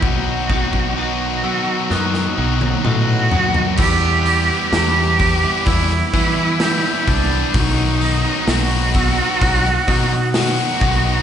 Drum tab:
CC |----------------|x---------------|----------------|
HH |----------------|--o-o-o-o-o-o-o-|o-o-o-o-o-o-o-o-|
SD |--------oo------|----o----o--oo--|----o----o--oo--|
T1 |-----------o----|----------------|----------------|
T2 |------------o---|----------------|----------------|
FT |--------------oo|----------------|----------------|
BD |o-oo------------|o-----o-o-o---o-|o-----o-o-o---o-|